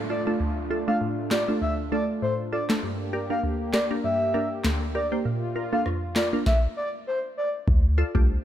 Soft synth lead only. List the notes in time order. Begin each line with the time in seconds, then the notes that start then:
0.10 D5
0.88 F5
1.31 D5
1.62 E5
1.92 D5
2.22 C5
2.52 D5
3.30 F5
3.73 D5
4.04 E5
4.95 D5
5.73 F5
6.16 D5
6.46 E5
6.77 D5
7.07 C5
7.37 D5